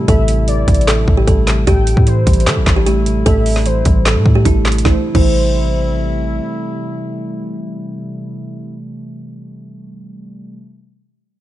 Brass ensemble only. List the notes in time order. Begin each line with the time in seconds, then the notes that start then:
Already playing: C3 G3 A3 E4
1.67 G3 A3 E4
4.85 C3 G3 A3 E4